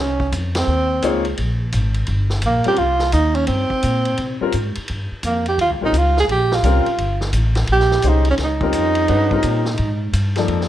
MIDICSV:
0, 0, Header, 1, 6, 480
1, 0, Start_track
1, 0, Tempo, 350672
1, 925, Time_signature, 4, 2, 24, 8
1, 14622, End_track
2, 0, Start_track
2, 0, Title_t, "Tenor saxophone"
2, 0, Program_c, 0, 66
2, 0, Note_on_c, 0, 61, 92
2, 459, Note_off_c, 0, 61, 0
2, 801, Note_on_c, 0, 60, 82
2, 1683, Note_off_c, 0, 60, 0
2, 3365, Note_on_c, 0, 58, 82
2, 3633, Note_off_c, 0, 58, 0
2, 3664, Note_on_c, 0, 67, 101
2, 3809, Note_on_c, 0, 65, 105
2, 3829, Note_off_c, 0, 67, 0
2, 4278, Note_off_c, 0, 65, 0
2, 4286, Note_on_c, 0, 63, 91
2, 4592, Note_on_c, 0, 61, 82
2, 4613, Note_off_c, 0, 63, 0
2, 4742, Note_off_c, 0, 61, 0
2, 4751, Note_on_c, 0, 60, 90
2, 6146, Note_off_c, 0, 60, 0
2, 7200, Note_on_c, 0, 58, 72
2, 7473, Note_off_c, 0, 58, 0
2, 7506, Note_on_c, 0, 67, 86
2, 7654, Note_off_c, 0, 67, 0
2, 7678, Note_on_c, 0, 65, 91
2, 7811, Note_off_c, 0, 65, 0
2, 8007, Note_on_c, 0, 63, 83
2, 8181, Note_on_c, 0, 65, 94
2, 8201, Note_off_c, 0, 63, 0
2, 8464, Note_off_c, 0, 65, 0
2, 8487, Note_on_c, 0, 68, 93
2, 8554, Note_off_c, 0, 68, 0
2, 8641, Note_on_c, 0, 67, 102
2, 8962, Note_on_c, 0, 65, 90
2, 8983, Note_off_c, 0, 67, 0
2, 9901, Note_off_c, 0, 65, 0
2, 10568, Note_on_c, 0, 67, 108
2, 11062, Note_on_c, 0, 63, 87
2, 11083, Note_off_c, 0, 67, 0
2, 11344, Note_off_c, 0, 63, 0
2, 11368, Note_on_c, 0, 61, 82
2, 11434, Note_off_c, 0, 61, 0
2, 11552, Note_on_c, 0, 63, 99
2, 13862, Note_off_c, 0, 63, 0
2, 14622, End_track
3, 0, Start_track
3, 0, Title_t, "Grand piano"
3, 0, Program_c, 1, 0
3, 1406, Note_on_c, 1, 58, 77
3, 1416, Note_on_c, 1, 63, 65
3, 1424, Note_on_c, 1, 65, 69
3, 1425, Note_on_c, 1, 68, 70
3, 1432, Note_on_c, 1, 73, 87
3, 1683, Note_off_c, 1, 58, 0
3, 1688, Note_off_c, 1, 63, 0
3, 1692, Note_off_c, 1, 65, 0
3, 1692, Note_off_c, 1, 68, 0
3, 1696, Note_off_c, 1, 73, 0
3, 3628, Note_on_c, 1, 55, 68
3, 3639, Note_on_c, 1, 60, 61
3, 3641, Note_on_c, 1, 61, 65
3, 3647, Note_on_c, 1, 65, 62
3, 3655, Note_on_c, 1, 70, 79
3, 3787, Note_off_c, 1, 55, 0
3, 3792, Note_off_c, 1, 60, 0
3, 3793, Note_off_c, 1, 61, 0
3, 3796, Note_off_c, 1, 65, 0
3, 3800, Note_off_c, 1, 70, 0
3, 6033, Note_on_c, 1, 55, 63
3, 6040, Note_on_c, 1, 60, 60
3, 6041, Note_on_c, 1, 61, 57
3, 6054, Note_on_c, 1, 65, 63
3, 6057, Note_on_c, 1, 70, 76
3, 6191, Note_off_c, 1, 55, 0
3, 6194, Note_off_c, 1, 60, 0
3, 6194, Note_off_c, 1, 61, 0
3, 6201, Note_off_c, 1, 65, 0
3, 6203, Note_off_c, 1, 70, 0
3, 7955, Note_on_c, 1, 55, 57
3, 7964, Note_on_c, 1, 60, 58
3, 7968, Note_on_c, 1, 61, 53
3, 7973, Note_on_c, 1, 65, 57
3, 7983, Note_on_c, 1, 70, 70
3, 8112, Note_off_c, 1, 55, 0
3, 8117, Note_off_c, 1, 60, 0
3, 8119, Note_off_c, 1, 61, 0
3, 8121, Note_off_c, 1, 65, 0
3, 8126, Note_off_c, 1, 70, 0
3, 9088, Note_on_c, 1, 55, 67
3, 9094, Note_on_c, 1, 60, 65
3, 9098, Note_on_c, 1, 61, 66
3, 9106, Note_on_c, 1, 65, 66
3, 9114, Note_on_c, 1, 70, 85
3, 9367, Note_off_c, 1, 55, 0
3, 9370, Note_off_c, 1, 60, 0
3, 9372, Note_off_c, 1, 61, 0
3, 9376, Note_off_c, 1, 65, 0
3, 9380, Note_off_c, 1, 70, 0
3, 11003, Note_on_c, 1, 56, 68
3, 11006, Note_on_c, 1, 61, 59
3, 11013, Note_on_c, 1, 63, 61
3, 11019, Note_on_c, 1, 67, 62
3, 11023, Note_on_c, 1, 72, 72
3, 11284, Note_off_c, 1, 56, 0
3, 11285, Note_off_c, 1, 61, 0
3, 11288, Note_off_c, 1, 63, 0
3, 11291, Note_off_c, 1, 67, 0
3, 11293, Note_off_c, 1, 72, 0
3, 11794, Note_on_c, 1, 55, 67
3, 11800, Note_on_c, 1, 60, 59
3, 11804, Note_on_c, 1, 65, 59
3, 11806, Note_on_c, 1, 61, 58
3, 11817, Note_on_c, 1, 70, 73
3, 12413, Note_off_c, 1, 55, 0
3, 12415, Note_off_c, 1, 60, 0
3, 12418, Note_off_c, 1, 61, 0
3, 12418, Note_off_c, 1, 65, 0
3, 12424, Note_off_c, 1, 70, 0
3, 12429, Note_on_c, 1, 56, 58
3, 12438, Note_on_c, 1, 61, 56
3, 12441, Note_on_c, 1, 62, 58
3, 12449, Note_on_c, 1, 66, 57
3, 12451, Note_on_c, 1, 71, 68
3, 12715, Note_off_c, 1, 56, 0
3, 12720, Note_off_c, 1, 61, 0
3, 12721, Note_off_c, 1, 62, 0
3, 12725, Note_off_c, 1, 66, 0
3, 12726, Note_off_c, 1, 71, 0
3, 12751, Note_on_c, 1, 55, 58
3, 12756, Note_on_c, 1, 60, 59
3, 12757, Note_on_c, 1, 61, 56
3, 12766, Note_on_c, 1, 65, 55
3, 12775, Note_on_c, 1, 70, 64
3, 13171, Note_off_c, 1, 55, 0
3, 13174, Note_off_c, 1, 60, 0
3, 13174, Note_off_c, 1, 61, 0
3, 13179, Note_off_c, 1, 65, 0
3, 13183, Note_off_c, 1, 70, 0
3, 14190, Note_on_c, 1, 53, 72
3, 14194, Note_on_c, 1, 58, 64
3, 14207, Note_on_c, 1, 63, 60
3, 14209, Note_on_c, 1, 69, 64
3, 14215, Note_on_c, 1, 74, 75
3, 14622, Note_off_c, 1, 53, 0
3, 14622, Note_off_c, 1, 58, 0
3, 14622, Note_off_c, 1, 63, 0
3, 14622, Note_off_c, 1, 69, 0
3, 14622, Note_off_c, 1, 74, 0
3, 14622, End_track
4, 0, Start_track
4, 0, Title_t, "Upright bass"
4, 0, Program_c, 2, 32
4, 0, Note_on_c, 2, 36, 85
4, 424, Note_off_c, 2, 36, 0
4, 442, Note_on_c, 2, 41, 92
4, 909, Note_off_c, 2, 41, 0
4, 925, Note_on_c, 2, 39, 76
4, 1391, Note_off_c, 2, 39, 0
4, 1401, Note_on_c, 2, 37, 85
4, 1869, Note_off_c, 2, 37, 0
4, 1899, Note_on_c, 2, 34, 83
4, 2358, Note_off_c, 2, 34, 0
4, 2366, Note_on_c, 2, 32, 95
4, 2832, Note_off_c, 2, 32, 0
4, 2848, Note_on_c, 2, 31, 89
4, 3313, Note_off_c, 2, 31, 0
4, 3322, Note_on_c, 2, 34, 82
4, 3611, Note_off_c, 2, 34, 0
4, 3808, Note_on_c, 2, 36, 86
4, 4274, Note_off_c, 2, 36, 0
4, 4289, Note_on_c, 2, 39, 92
4, 4755, Note_off_c, 2, 39, 0
4, 4772, Note_on_c, 2, 43, 83
4, 5057, Note_off_c, 2, 43, 0
4, 5249, Note_on_c, 2, 46, 83
4, 5715, Note_off_c, 2, 46, 0
4, 5728, Note_on_c, 2, 48, 78
4, 6015, Note_off_c, 2, 48, 0
4, 6211, Note_on_c, 2, 44, 83
4, 6497, Note_off_c, 2, 44, 0
4, 6704, Note_on_c, 2, 43, 86
4, 6984, Note_off_c, 2, 43, 0
4, 7163, Note_on_c, 2, 41, 90
4, 7633, Note_off_c, 2, 41, 0
4, 7639, Note_on_c, 2, 39, 81
4, 7800, Note_off_c, 2, 39, 0
4, 7800, Note_on_c, 2, 37, 52
4, 7946, Note_off_c, 2, 37, 0
4, 7955, Note_on_c, 2, 34, 61
4, 8101, Note_off_c, 2, 34, 0
4, 8109, Note_on_c, 2, 37, 93
4, 8586, Note_off_c, 2, 37, 0
4, 8598, Note_on_c, 2, 34, 85
4, 9070, Note_off_c, 2, 34, 0
4, 9076, Note_on_c, 2, 36, 91
4, 9370, Note_off_c, 2, 36, 0
4, 9555, Note_on_c, 2, 31, 80
4, 10021, Note_off_c, 2, 31, 0
4, 10029, Note_on_c, 2, 33, 91
4, 10505, Note_off_c, 2, 33, 0
4, 10525, Note_on_c, 2, 34, 94
4, 10993, Note_off_c, 2, 34, 0
4, 11001, Note_on_c, 2, 36, 86
4, 11466, Note_off_c, 2, 36, 0
4, 11475, Note_on_c, 2, 37, 78
4, 11947, Note_off_c, 2, 37, 0
4, 11957, Note_on_c, 2, 41, 95
4, 12428, Note_off_c, 2, 41, 0
4, 12447, Note_on_c, 2, 43, 86
4, 12907, Note_off_c, 2, 43, 0
4, 12915, Note_on_c, 2, 46, 87
4, 13386, Note_off_c, 2, 46, 0
4, 13400, Note_on_c, 2, 44, 82
4, 13862, Note_off_c, 2, 44, 0
4, 13870, Note_on_c, 2, 43, 89
4, 14339, Note_off_c, 2, 43, 0
4, 14347, Note_on_c, 2, 41, 78
4, 14622, Note_off_c, 2, 41, 0
4, 14622, End_track
5, 0, Start_track
5, 0, Title_t, "Muted upright bass strokes"
5, 3647, Note_on_c, 9, 29, 39
5, 3784, Note_off_c, 9, 29, 0
5, 5069, Note_on_c, 9, 29, 37
5, 5206, Note_off_c, 9, 29, 0
5, 6038, Note_on_c, 9, 29, 36
5, 6175, Note_off_c, 9, 29, 0
5, 6532, Note_on_c, 9, 29, 34
5, 6669, Note_off_c, 9, 29, 0
5, 7004, Note_on_c, 9, 29, 37
5, 7141, Note_off_c, 9, 29, 0
5, 14622, End_track
6, 0, Start_track
6, 0, Title_t, "Drums"
6, 272, Note_on_c, 9, 36, 48
6, 409, Note_off_c, 9, 36, 0
6, 443, Note_on_c, 9, 44, 48
6, 443, Note_on_c, 9, 51, 63
6, 580, Note_off_c, 9, 44, 0
6, 580, Note_off_c, 9, 51, 0
6, 749, Note_on_c, 9, 51, 70
6, 756, Note_on_c, 9, 38, 82
6, 886, Note_off_c, 9, 51, 0
6, 893, Note_off_c, 9, 38, 0
6, 1402, Note_on_c, 9, 44, 55
6, 1402, Note_on_c, 9, 51, 63
6, 1539, Note_off_c, 9, 44, 0
6, 1539, Note_off_c, 9, 51, 0
6, 1707, Note_on_c, 9, 51, 45
6, 1844, Note_off_c, 9, 51, 0
6, 1882, Note_on_c, 9, 51, 57
6, 2019, Note_off_c, 9, 51, 0
6, 2360, Note_on_c, 9, 44, 57
6, 2360, Note_on_c, 9, 51, 66
6, 2497, Note_off_c, 9, 44, 0
6, 2497, Note_off_c, 9, 51, 0
6, 2660, Note_on_c, 9, 51, 46
6, 2796, Note_off_c, 9, 51, 0
6, 2828, Note_on_c, 9, 51, 53
6, 2965, Note_off_c, 9, 51, 0
6, 3145, Note_on_c, 9, 38, 38
6, 3282, Note_off_c, 9, 38, 0
6, 3308, Note_on_c, 9, 44, 48
6, 3308, Note_on_c, 9, 51, 72
6, 3445, Note_off_c, 9, 44, 0
6, 3445, Note_off_c, 9, 51, 0
6, 3615, Note_on_c, 9, 51, 48
6, 3752, Note_off_c, 9, 51, 0
6, 3783, Note_on_c, 9, 51, 47
6, 3920, Note_off_c, 9, 51, 0
6, 4096, Note_on_c, 9, 38, 43
6, 4232, Note_off_c, 9, 38, 0
6, 4273, Note_on_c, 9, 44, 51
6, 4273, Note_on_c, 9, 51, 65
6, 4410, Note_off_c, 9, 44, 0
6, 4410, Note_off_c, 9, 51, 0
6, 4581, Note_on_c, 9, 51, 44
6, 4718, Note_off_c, 9, 51, 0
6, 4747, Note_on_c, 9, 51, 60
6, 4884, Note_off_c, 9, 51, 0
6, 5067, Note_on_c, 9, 36, 43
6, 5204, Note_off_c, 9, 36, 0
6, 5237, Note_on_c, 9, 44, 53
6, 5237, Note_on_c, 9, 51, 66
6, 5374, Note_off_c, 9, 44, 0
6, 5374, Note_off_c, 9, 51, 0
6, 5546, Note_on_c, 9, 51, 45
6, 5683, Note_off_c, 9, 51, 0
6, 5714, Note_on_c, 9, 51, 53
6, 5851, Note_off_c, 9, 51, 0
6, 6191, Note_on_c, 9, 44, 54
6, 6191, Note_on_c, 9, 51, 61
6, 6328, Note_off_c, 9, 44, 0
6, 6328, Note_off_c, 9, 51, 0
6, 6507, Note_on_c, 9, 51, 49
6, 6644, Note_off_c, 9, 51, 0
6, 6677, Note_on_c, 9, 51, 56
6, 6813, Note_off_c, 9, 51, 0
6, 7158, Note_on_c, 9, 44, 52
6, 7158, Note_on_c, 9, 51, 59
6, 7295, Note_off_c, 9, 44, 0
6, 7295, Note_off_c, 9, 51, 0
6, 7469, Note_on_c, 9, 51, 49
6, 7606, Note_off_c, 9, 51, 0
6, 7650, Note_on_c, 9, 51, 56
6, 7787, Note_off_c, 9, 51, 0
6, 8127, Note_on_c, 9, 44, 56
6, 8127, Note_on_c, 9, 51, 61
6, 8264, Note_off_c, 9, 44, 0
6, 8264, Note_off_c, 9, 51, 0
6, 8447, Note_on_c, 9, 38, 49
6, 8583, Note_off_c, 9, 38, 0
6, 8611, Note_on_c, 9, 51, 56
6, 8748, Note_off_c, 9, 51, 0
6, 8921, Note_on_c, 9, 38, 61
6, 9058, Note_off_c, 9, 38, 0
6, 9083, Note_on_c, 9, 44, 47
6, 9083, Note_on_c, 9, 51, 67
6, 9220, Note_off_c, 9, 44, 0
6, 9220, Note_off_c, 9, 51, 0
6, 9393, Note_on_c, 9, 51, 45
6, 9529, Note_off_c, 9, 51, 0
6, 9560, Note_on_c, 9, 51, 57
6, 9697, Note_off_c, 9, 51, 0
6, 9868, Note_on_c, 9, 38, 50
6, 10005, Note_off_c, 9, 38, 0
6, 10030, Note_on_c, 9, 44, 56
6, 10030, Note_on_c, 9, 51, 72
6, 10167, Note_off_c, 9, 44, 0
6, 10167, Note_off_c, 9, 51, 0
6, 10336, Note_on_c, 9, 51, 47
6, 10343, Note_on_c, 9, 38, 53
6, 10473, Note_off_c, 9, 51, 0
6, 10480, Note_off_c, 9, 38, 0
6, 10502, Note_on_c, 9, 51, 59
6, 10639, Note_off_c, 9, 51, 0
6, 10675, Note_on_c, 9, 38, 31
6, 10812, Note_off_c, 9, 38, 0
6, 10832, Note_on_c, 9, 38, 44
6, 10969, Note_off_c, 9, 38, 0
6, 10981, Note_on_c, 9, 44, 55
6, 10981, Note_on_c, 9, 51, 59
6, 11118, Note_off_c, 9, 44, 0
6, 11118, Note_off_c, 9, 51, 0
6, 11288, Note_on_c, 9, 51, 52
6, 11425, Note_off_c, 9, 51, 0
6, 11465, Note_on_c, 9, 51, 55
6, 11472, Note_on_c, 9, 38, 34
6, 11602, Note_off_c, 9, 51, 0
6, 11609, Note_off_c, 9, 38, 0
6, 11783, Note_on_c, 9, 36, 57
6, 11920, Note_off_c, 9, 36, 0
6, 11944, Note_on_c, 9, 44, 56
6, 11944, Note_on_c, 9, 51, 65
6, 12081, Note_off_c, 9, 44, 0
6, 12081, Note_off_c, 9, 51, 0
6, 12251, Note_on_c, 9, 51, 52
6, 12388, Note_off_c, 9, 51, 0
6, 12429, Note_on_c, 9, 51, 59
6, 12566, Note_off_c, 9, 51, 0
6, 12744, Note_on_c, 9, 36, 57
6, 12881, Note_off_c, 9, 36, 0
6, 12902, Note_on_c, 9, 44, 59
6, 12902, Note_on_c, 9, 51, 73
6, 13039, Note_off_c, 9, 44, 0
6, 13039, Note_off_c, 9, 51, 0
6, 13215, Note_on_c, 9, 38, 46
6, 13352, Note_off_c, 9, 38, 0
6, 13380, Note_on_c, 9, 51, 52
6, 13517, Note_off_c, 9, 51, 0
6, 13871, Note_on_c, 9, 44, 58
6, 13871, Note_on_c, 9, 51, 71
6, 14008, Note_off_c, 9, 44, 0
6, 14008, Note_off_c, 9, 51, 0
6, 14174, Note_on_c, 9, 51, 49
6, 14181, Note_on_c, 9, 38, 37
6, 14311, Note_off_c, 9, 51, 0
6, 14318, Note_off_c, 9, 38, 0
6, 14345, Note_on_c, 9, 51, 51
6, 14482, Note_off_c, 9, 51, 0
6, 14525, Note_on_c, 9, 38, 29
6, 14622, Note_off_c, 9, 38, 0
6, 14622, End_track
0, 0, End_of_file